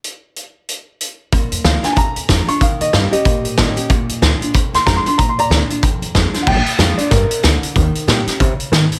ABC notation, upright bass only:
X:1
M:4/4
L:1/8
Q:"Swing" 1/4=186
K:Bbmix
V:1 name="Upright bass" clef=bass
z8 | B,,, F,, D,, z F,, E,, F,, z | E,, B,, G,, z B,, A,, B,, z | B,,, F,, D,, z F,, E,, F,, z |
B,,, F,, D,, z F,, E,, F,, z | B,,, z F,, z G,, z D,, z | E,, z B,, z C, z E, z |]